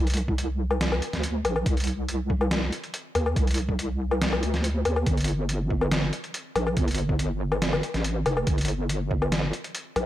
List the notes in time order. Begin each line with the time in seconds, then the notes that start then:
Already playing: C2
0.07 closed hi-hat
0.10 closed hi-hat
0.14 closed hi-hat
0.17 closed hi-hat
0.28 kick
0.38 closed hi-hat
0.71 low woodblock
0.81 snare, closed hi-hat
0.92 low woodblock
1.02 closed hi-hat
1.13 D2, snare, closed hi-hat
1.23 closed hi-hat
1.45 A#1, closed hi-hat, low woodblock
1.56 low woodblock
1.66 C2, kick, closed hi-hat
1.77 closed hi-hat
1.80 closed hi-hat
1.84 closed hi-hat
1.87 closed hi-hat
2.09 closed hi-hat
2.30 kick
2.41 low woodblock
2.51 snare, closed hi-hat
2.72 closed hi-hat
2.84 closed hi-hat
2.94 closed hi-hat
3.15 D#2, closed hi-hat, low woodblock
3.26 low woodblock
3.36 C2, kick, closed hi-hat
3.47 closed hi-hat
3.51 closed hi-hat
3.54 closed hi-hat
3.58 closed hi-hat
3.69 kick
3.79 closed hi-hat
4.11 low woodblock
4.22 snare, closed hi-hat
4.33 low woodblock
4.43 D2, closed hi-hat
4.54 snare, closed hi-hat
4.64 closed hi-hat
4.85 D#2, closed hi-hat, low woodblock
4.96 low woodblock
5.06 G1, kick, closed hi-hat
5.17 closed hi-hat
5.21 closed hi-hat
5.24 closed hi-hat
5.28 closed hi-hat
5.49 closed hi-hat
5.70 kick
5.81 low woodblock
5.92 snare, closed hi-hat
6.13 closed hi-hat
6.24 closed hi-hat
6.34 closed hi-hat
6.56 A#1, closed hi-hat, low woodblock
6.67 low woodblock
6.77 G1, kick, closed hi-hat
6.88 closed hi-hat
6.91 closed hi-hat
6.95 closed hi-hat
6.98 closed hi-hat
7.09 kick
7.19 closed hi-hat
7.52 low woodblock
7.62 snare, closed hi-hat
7.73 low woodblock
7.83 closed hi-hat
7.94 A1, snare, closed hi-hat
8.04 closed hi-hat
8.26 F1, closed hi-hat, low woodblock
8.37 low woodblock
8.47 G1, kick, closed hi-hat
8.58 closed hi-hat
8.61 closed hi-hat
8.65 closed hi-hat
8.68 closed hi-hat
8.89 closed hi-hat
9.11 kick
9.22 low woodblock
9.32 snare, closed hi-hat
9.53 closed hi-hat
9.64 closed hi-hat
9.75 closed hi-hat
9.96 A#1, closed hi-hat, low woodblock